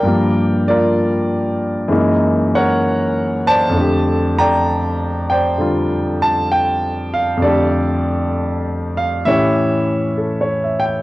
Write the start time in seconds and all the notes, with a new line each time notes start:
Already playing: A#4 D5 G5
0.03 G2 F3 G3
0.08 A#3
0.68 F4 A#4 D5
1.88 F#2 E3 G#3 A#3
1.92 D#4
2.55 A#4 C#5 F#5
3.47 C5 D5 A5
3.69 F2
3.73 D3 A3
3.81 G4
4.39 D5 G5 A#5
5.30 C5 D5 G5
5.58 D3 G3 F4
6.22 A5
6.52 G5
7.14 F5
7.37 F2
7.41 D3 A3 G4 A4 D5
7.48 G4
8.97 F5
9.25 A2 E3 C#4 G4 C#5 E5
10.18 A4
10.41 C#5
10.64 E5
10.80 G5
10.86 G5